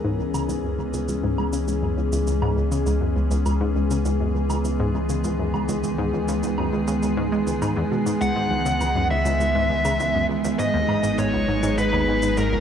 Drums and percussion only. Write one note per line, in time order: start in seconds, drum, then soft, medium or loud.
0.34 cabasa medium
0.34 low woodblock soft
0.49 cabasa soft
0.94 cabasa medium
1.08 cabasa soft
1.38 low woodblock soft
1.53 cabasa medium
1.68 cabasa soft
2.13 cabasa medium
2.27 cabasa medium
2.42 low woodblock soft
2.72 cabasa medium
2.87 cabasa soft
3.31 cabasa medium
3.46 cabasa soft
3.46 low woodblock soft
3.91 cabasa medium
4.05 cabasa medium
4.50 cabasa medium
4.50 low woodblock soft
4.65 cabasa medium
5.09 cabasa medium
5.24 cabasa soft
5.54 low woodblock soft
5.69 cabasa medium
5.84 cabasa soft
6.28 cabasa medium
6.43 cabasa soft
6.58 low woodblock soft
6.88 cabasa medium
7.03 cabasa medium
7.47 cabasa medium
7.62 cabasa medium
7.62 low woodblock soft
8.07 cabasa medium
8.21 cabasa soft
8.66 cabasa medium
8.81 cabasa soft
8.81 low woodblock soft
9.25 cabasa medium
9.40 cabasa soft
9.85 cabasa medium
9.85 low woodblock soft
10.00 cabasa soft
10.44 cabasa medium
10.59 cabasa soft
10.89 low woodblock soft
11.04 cabasa medium
11.18 cabasa soft
11.63 cabasa medium
11.78 cabasa soft
11.93 low woodblock soft
12.22 cabasa medium
12.37 cabasa soft